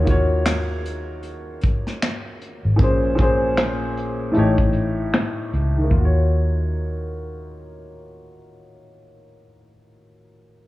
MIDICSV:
0, 0, Header, 1, 4, 480
1, 0, Start_track
1, 0, Key_signature, -6, "minor"
1, 0, Tempo, 779221
1, 1720, Time_signature, 4, 2, 24, 8
1, 6576, End_track
2, 0, Start_track
2, 0, Title_t, "Upright piano"
2, 0, Program_c, 0, 0
2, 0, Control_c, 0, 64, 127
2, 0, Note_on_c, 0, 51, 80
2, 0, Note_on_c, 0, 58, 76
2, 0, Note_on_c, 0, 65, 77
2, 0, Note_on_c, 0, 66, 71
2, 0, Note_on_c, 0, 73, 90
2, 18, Note_off_c, 0, 51, 0
2, 18, Note_on_c, 0, 51, 76
2, 31, Note_off_c, 0, 58, 0
2, 31, Note_on_c, 0, 58, 76
2, 41, Note_off_c, 0, 65, 0
2, 41, Note_on_c, 0, 65, 74
2, 52, Note_off_c, 0, 66, 0
2, 52, Note_on_c, 0, 66, 72
2, 63, Note_off_c, 0, 73, 0
2, 63, Note_on_c, 0, 73, 98
2, 843, Note_off_c, 0, 51, 0
2, 849, Note_off_c, 0, 58, 0
2, 855, Note_off_c, 0, 65, 0
2, 860, Note_off_c, 0, 66, 0
2, 865, Note_off_c, 0, 73, 0
2, 1701, Note_on_c, 0, 46, 74
2, 1713, Note_on_c, 0, 58, 69
2, 1723, Note_on_c, 0, 61, 75
2, 1727, Control_c, 0, 64, 0
2, 1733, Note_on_c, 0, 68, 73
2, 1746, Note_on_c, 0, 72, 94
2, 1841, Control_c, 0, 64, 127
2, 1918, Note_off_c, 0, 46, 0
2, 1925, Note_off_c, 0, 58, 0
2, 1930, Note_off_c, 0, 61, 0
2, 1935, Note_off_c, 0, 68, 0
2, 1940, Note_on_c, 0, 46, 82
2, 1941, Note_off_c, 0, 72, 0
2, 1952, Note_on_c, 0, 58, 77
2, 1962, Note_on_c, 0, 61, 75
2, 1973, Note_on_c, 0, 68, 80
2, 1985, Note_on_c, 0, 72, 92
2, 2658, Note_on_c, 0, 45, 87
2, 2670, Note_off_c, 0, 46, 0
2, 2670, Note_on_c, 0, 57, 72
2, 2676, Note_off_c, 0, 58, 0
2, 2682, Note_off_c, 0, 61, 0
2, 2682, Note_on_c, 0, 63, 78
2, 2687, Note_off_c, 0, 68, 0
2, 2688, Control_c, 0, 64, 0
2, 2692, Note_on_c, 0, 67, 78
2, 2693, Note_off_c, 0, 72, 0
2, 2703, Note_on_c, 0, 73, 92
2, 2807, Control_c, 0, 64, 127
2, 3483, Note_off_c, 0, 45, 0
2, 3489, Note_off_c, 0, 57, 0
2, 3495, Note_off_c, 0, 63, 0
2, 3500, Note_off_c, 0, 67, 0
2, 3506, Note_off_c, 0, 73, 0
2, 3553, Note_on_c, 0, 51, 70
2, 3596, Note_on_c, 0, 58, 64
2, 3640, Note_on_c, 0, 65, 65
2, 3649, Control_c, 0, 64, 0
2, 3685, Note_on_c, 0, 66, 63
2, 3727, Note_on_c, 0, 73, 81
2, 3754, Control_c, 0, 64, 127
2, 5803, Note_off_c, 0, 51, 0
2, 5846, Note_off_c, 0, 58, 0
2, 5890, Note_off_c, 0, 65, 0
2, 5935, Note_off_c, 0, 66, 0
2, 5977, Note_off_c, 0, 73, 0
2, 6576, End_track
3, 0, Start_track
3, 0, Title_t, "Fingered electric bass"
3, 0, Program_c, 1, 33
3, 0, Note_on_c, 1, 39, 106
3, 1218, Note_off_c, 1, 39, 0
3, 1632, Note_on_c, 1, 32, 90
3, 1715, Note_off_c, 1, 32, 0
3, 1723, Note_on_c, 1, 34, 101
3, 2657, Note_off_c, 1, 34, 0
3, 2690, Note_on_c, 1, 33, 81
3, 3140, Note_off_c, 1, 33, 0
3, 3410, Note_on_c, 1, 37, 78
3, 3622, Note_off_c, 1, 37, 0
3, 3645, Note_on_c, 1, 39, 87
3, 5895, Note_off_c, 1, 39, 0
3, 6576, End_track
4, 0, Start_track
4, 0, Title_t, "Drums"
4, 41, Note_on_c, 9, 42, 58
4, 45, Note_on_c, 9, 36, 83
4, 102, Note_off_c, 9, 42, 0
4, 107, Note_off_c, 9, 36, 0
4, 282, Note_on_c, 9, 26, 79
4, 284, Note_on_c, 9, 38, 104
4, 287, Note_on_c, 9, 42, 83
4, 343, Note_off_c, 9, 26, 0
4, 345, Note_off_c, 9, 38, 0
4, 348, Note_off_c, 9, 42, 0
4, 527, Note_on_c, 9, 42, 61
4, 589, Note_off_c, 9, 42, 0
4, 756, Note_on_c, 9, 42, 67
4, 818, Note_off_c, 9, 42, 0
4, 994, Note_on_c, 9, 42, 63
4, 1007, Note_on_c, 9, 36, 77
4, 1055, Note_off_c, 9, 42, 0
4, 1069, Note_off_c, 9, 36, 0
4, 1151, Note_on_c, 9, 38, 32
4, 1212, Note_off_c, 9, 38, 0
4, 1247, Note_on_c, 9, 26, 92
4, 1248, Note_on_c, 9, 42, 79
4, 1249, Note_on_c, 9, 38, 114
4, 1309, Note_off_c, 9, 26, 0
4, 1309, Note_off_c, 9, 42, 0
4, 1310, Note_off_c, 9, 38, 0
4, 1487, Note_on_c, 9, 42, 68
4, 1549, Note_off_c, 9, 42, 0
4, 1720, Note_on_c, 9, 36, 114
4, 1722, Note_on_c, 9, 42, 68
4, 1781, Note_off_c, 9, 36, 0
4, 1783, Note_off_c, 9, 42, 0
4, 1959, Note_on_c, 9, 42, 59
4, 1964, Note_on_c, 9, 36, 86
4, 2021, Note_off_c, 9, 42, 0
4, 2026, Note_off_c, 9, 36, 0
4, 2202, Note_on_c, 9, 26, 78
4, 2203, Note_on_c, 9, 38, 99
4, 2206, Note_on_c, 9, 42, 83
4, 2263, Note_off_c, 9, 26, 0
4, 2265, Note_off_c, 9, 38, 0
4, 2268, Note_off_c, 9, 42, 0
4, 2445, Note_on_c, 9, 42, 64
4, 2507, Note_off_c, 9, 42, 0
4, 2675, Note_on_c, 9, 42, 58
4, 2737, Note_off_c, 9, 42, 0
4, 2822, Note_on_c, 9, 36, 85
4, 2884, Note_off_c, 9, 36, 0
4, 2911, Note_on_c, 9, 42, 60
4, 2973, Note_off_c, 9, 42, 0
4, 3164, Note_on_c, 9, 26, 86
4, 3165, Note_on_c, 9, 42, 74
4, 3166, Note_on_c, 9, 38, 107
4, 3226, Note_off_c, 9, 26, 0
4, 3227, Note_off_c, 9, 42, 0
4, 3228, Note_off_c, 9, 38, 0
4, 3408, Note_on_c, 9, 42, 58
4, 3469, Note_off_c, 9, 42, 0
4, 3641, Note_on_c, 9, 36, 95
4, 3702, Note_off_c, 9, 36, 0
4, 6576, End_track
0, 0, End_of_file